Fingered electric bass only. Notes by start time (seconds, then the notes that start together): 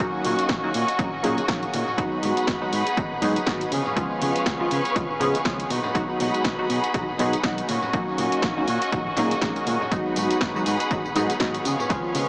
0.24 A#2
0.39 muted fingered electric bass stroke
0.49 A#1
0.74 A#2
0.99 A#1
1.24 A#2
1.38 muted fingered electric bass stroke
1.48 A#1
1.73 A#2
1.98 G#1
2.23 G#2
2.48 G#1
2.72 G#2
2.97 G#1
3.22 G#2
3.36 muted fingered electric bass stroke
3.47 G#1
3.71 C#3
3.97 C#2
4.21 C#3
4.35 muted fingered electric bass stroke
4.46 C#2
4.71 C#3
4.96 C#2
5.21 C#3
5.35 muted fingered electric bass stroke
5.45 C#2
5.70 B2
5.95 B1
6.20 B2
6.44 B1
6.69 B2
6.94 B1
7.19 B2
7.33 muted fingered electric bass stroke
7.44 B1
7.69 A#2
7.93 A#1
8.18 A#2
8.43 A#1
8.68 A#2
8.93 A#1
9.17 A#2
9.32 muted fingered electric bass stroke
9.42 A#1
9.67 A#2
9.92 G#1
10.16 G#2
10.30 muted fingered electric bass stroke
10.41 G#1
10.66 G#2
10.91 G#1
11.15 G#2
11.29 muted fingered electric bass stroke
11.40 G#1
11.65 C#3
11.90 C#2
12.15 C#3